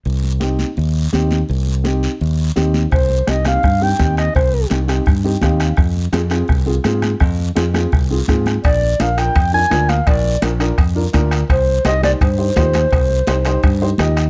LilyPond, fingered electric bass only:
\new Staff \with { instrumentName = "Fingered electric bass" } { \clef bass \time 4/4 \key c \minor \tempo 4 = 168 c,2 ees,4 ees,4 | c,2 ees,4 ees,4 | c,4 c,4 g,4 ees,4 | c,4 c,4 g,4 ees,4 |
f,4 f,4 c,4 aes,4 | f,4 f,4 c,4 aes,4 | bes,,4 bes,,4 f,4 d,4 | bes,,4 bes,,4 f,4 d,4 |
c,4 c,4 g,4 ees,4 | c,4 c,4 g,4 ees,4 | }